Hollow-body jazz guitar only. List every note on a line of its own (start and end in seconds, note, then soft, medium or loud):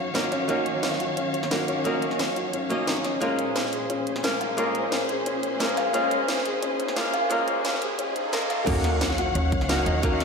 0.00 0.12 F#3 medium
0.00 0.13 A#3 medium
0.00 0.13 C#4 medium
0.00 0.13 D#4 medium
0.00 0.13 A#4 medium
0.14 0.47 F#3 medium
0.14 0.47 A#3 medium
0.14 0.47 C#4 medium
0.14 0.47 D#4 medium
0.14 0.47 A#4 medium
0.48 1.49 F#3 medium
0.48 1.49 A#3 medium
0.48 1.49 C#4 medium
0.48 1.50 D#4 medium
0.48 1.50 A#4 medium
1.51 1.83 F#3 medium
1.51 1.83 A#3 medium
1.51 1.83 C#4 medium
1.51 1.84 D#4 medium
1.51 1.84 A#4 medium
1.84 2.68 F#3 medium
1.84 2.69 A#3 medium
1.84 2.69 C#4 medium
1.84 2.69 D#4 medium
1.84 2.69 A#4 medium
2.69 3.19 F#3 medium
2.69 3.20 A#3 medium
2.69 3.20 C#4 medium
2.69 3.20 D#4 medium
2.69 3.20 D#5 medium
3.20 4.21 G#3 medium
3.20 4.22 A#3 medium
3.20 4.22 C#4 medium
3.20 4.22 F4 medium
3.20 4.22 A#4 loud
4.23 4.56 G#3 medium
4.23 4.56 A#3 medium
4.23 4.56 C#4 medium
4.23 4.56 F4 medium
4.23 4.56 A#4 medium
4.57 5.58 G#3 medium
4.57 5.58 A#3 medium
4.57 5.58 C#4 medium
4.57 5.59 F4 medium
4.57 5.59 A#4 medium
5.60 5.92 G#3 medium
5.60 5.92 A#3 medium
5.60 5.92 C#4 medium
5.60 5.92 F4 medium
5.60 5.93 A#4 medium
5.93 6.94 G#3 medium
5.93 6.94 A#3 medium
5.93 6.95 C#4 medium
5.93 6.95 F4 medium
5.93 6.95 A#4 loud
6.96 7.28 G#3 medium
6.96 7.29 A#3 medium
6.96 7.29 C#4 medium
6.96 7.29 F4 medium
6.96 7.29 A#4 medium
7.30 8.30 G#3 medium
7.30 8.31 A#3 medium
7.30 8.31 C#4 medium
7.30 8.31 F4 medium
7.30 8.32 A#4 loud
8.32 8.65 G#3 medium
8.32 8.65 A#3 medium
8.32 8.65 C#4 medium
8.32 8.65 F4 medium
8.32 8.65 A#4 medium
8.66 9.67 F#3 medium
8.66 9.67 A#3 medium
8.66 9.67 C#4 medium
8.66 9.68 D#4 medium
8.66 9.68 A#4 loud
9.69 10.01 F#3 medium
9.69 10.01 A#3 medium
9.69 10.02 C#4 medium
9.69 10.02 D#4 medium
9.69 10.02 A#4 medium
10.02 10.24 F#3 medium
10.02 10.24 A#3 medium
10.02 10.24 C#4 medium
10.02 10.24 D#4 medium
10.02 10.24 A#4 medium